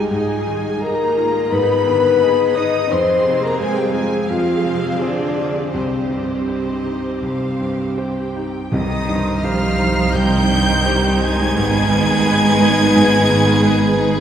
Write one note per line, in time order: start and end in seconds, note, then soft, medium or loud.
0.00 0.13 C2 soft
0.00 0.13 G2 soft
0.00 0.10 G#3 medium
0.00 0.10 D#4 medium
0.00 0.13 D#4 soft
0.00 0.11 F4 medium
0.00 0.13 G4 soft
0.00 0.13 D#5 soft
0.00 0.81 D#5 soft
0.10 1.48 G#2 soft
0.10 0.81 G#3 medium
0.10 0.81 D#4 soft
0.10 0.81 G#4 medium
0.10 2.18 G#4 soft
0.10 0.81 G#5 medium
0.47 1.03 D#3 soft
0.82 1.51 A#3 medium
0.82 1.17 D#4 soft
0.82 1.13 G#4 soft
0.82 1.52 A#4 medium
0.82 1.14 D#5 soft
0.82 2.19 D#5 medium
0.82 1.52 A#5 medium
1.17 1.73 D#4 soft
1.17 1.52 F4 medium
1.51 2.87 G#2 soft
1.51 2.56 B3 medium
1.51 1.87 D#4 medium
1.51 2.57 B4 loud
1.51 2.56 B5 medium
1.86 2.21 D3 medium
1.86 2.42 D#3 soft
2.21 2.91 D#4 medium
2.21 2.89 G#4 medium
2.21 2.53 G#4 soft
2.21 2.89 D#5 soft
2.21 2.53 D#5 soft
2.56 2.91 D#4 soft
2.56 2.91 D#4 medium
2.56 2.91 D#5 medium
2.56 2.91 D#6 medium
2.90 4.25 F2 soft
2.90 4.25 C4 medium
2.90 3.42 C4 medium
2.90 4.25 G#4 medium
2.90 3.42 C5 medium
2.90 4.25 F5 medium
2.90 3.43 C6 medium
3.25 3.80 C3 soft
3.42 3.60 A#3 medium
3.42 3.60 A#4 medium
3.42 3.60 A#5 medium
3.60 3.77 G#3 medium
3.60 3.77 G#4 medium
3.60 3.91 G#4 soft
3.60 3.91 C5 soft
3.60 3.77 G#5 medium
3.77 3.95 G3 medium
3.77 3.95 G4 medium
3.77 3.95 G5 medium
3.94 4.29 G#3 medium
3.94 4.50 F4 soft
3.94 4.29 G#4 medium
3.94 4.28 G#5 medium
4.28 5.68 F2 soft
4.28 4.99 F3 medium
4.28 5.69 C4 medium
4.28 5.01 F4 medium
4.28 5.69 G#4 medium
4.28 4.99 F5 medium
4.28 5.69 F5 medium
4.65 5.22 C3 soft
5.00 5.73 D3 medium
5.00 5.73 D4 medium
5.00 5.33 G#4 soft
5.00 5.33 C5 soft
5.00 5.72 D5 medium
5.38 5.73 F4 soft
5.71 7.19 C2 soft
5.71 8.31 C3 soft
5.71 8.34 C4 medium
5.71 8.47 C4 soft
5.71 8.48 G4 soft
5.71 8.31 C5 soft
5.71 6.38 D#5 soft
6.10 6.70 G2 soft
6.47 6.81 G4 soft
6.47 6.81 C5 soft
6.47 7.18 D#5 medium
6.86 7.45 D#4 soft
7.22 8.68 C2 soft
7.22 7.97 F5 medium
7.60 8.20 G2 soft
7.97 8.32 G4 soft
7.97 8.32 C5 soft
7.97 8.72 G5 soft
8.36 8.73 D#4 soft
8.72 11.52 C2 medium
8.72 10.11 C2 medium
8.72 9.75 C3 medium
8.72 14.20 D#3 medium
8.72 9.40 D#3 medium
8.72 11.52 C4 medium
8.72 11.52 D#4 medium
8.72 14.20 D#4 medium
8.72 11.52 C5 soft
8.72 9.45 D#5 medium
8.72 9.40 D#6 medium
9.09 9.66 G2 soft
9.44 10.15 F3 medium
9.44 9.76 G4 soft
9.44 9.76 C5 medium
9.44 10.16 F5 medium
9.44 10.15 F6 medium
9.79 10.36 D#4 soft
10.14 11.52 C2 medium
10.14 11.21 G3 medium
10.14 11.22 G5 medium
10.14 11.21 G6 loud
10.50 11.07 G2 soft
10.86 11.18 G4 medium
10.86 11.18 C5 medium
11.21 14.20 G#3 medium
11.21 11.56 D#4 soft
11.21 14.05 G#5 loud
11.21 14.20 G#6 loud
11.56 14.20 G#1 medium
11.56 12.90 G#2 medium
11.56 14.20 B3 medium
11.56 14.20 G#4 medium
11.56 14.20 B4 medium
11.91 12.46 D#3 medium
12.26 12.57 G#4 medium
12.26 12.57 B4 medium
12.60 13.15 D#4 medium
12.95 14.20 G#2 medium
13.29 13.84 D#3 medium
13.64 13.94 G#4 medium
13.64 13.94 B4 medium
13.97 14.20 D#4 medium